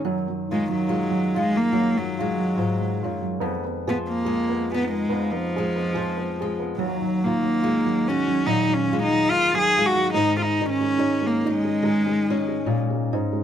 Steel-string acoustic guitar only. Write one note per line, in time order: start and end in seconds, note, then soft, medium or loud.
0.00 0.51 D#3 medium
0.00 1.36 D#4 medium
0.05 1.72 F#2 medium
0.52 3.87 D#3 medium
0.89 2.19 G#3 medium
1.36 4.74 F4 medium
1.73 2.57 F#2 medium
2.21 4.25 G#3 medium
2.58 3.04 G#2 medium
3.04 3.41 F#2 medium
3.41 5.09 F2 medium
3.87 5.94 F3 medium
4.26 5.57 G#3 medium
4.74 8.09 D#4 medium
5.10 6.74 F2 medium
5.58 6.41 G#3 medium
5.95 6.74 F3 medium
6.42 6.79 G#3 medium
6.79 10.14 D#2 medium
7.26 9.30 D#3 medium
7.64 8.92 G#3 medium
8.10 10.10 F#4 medium
8.47 9.31 A#2 medium
8.93 9.77 G#3 medium
9.31 10.60 D#3 medium
9.78 10.99 G#3 medium
10.15 13.12 G#2 medium
10.61 11.82 D#3 medium
10.99 12.29 C#4 medium
11.47 13.44 D#4 medium
11.83 12.66 D#3 medium
12.30 13.44 C#4 medium
12.66 13.13 A#2 medium
13.13 13.44 G#2 medium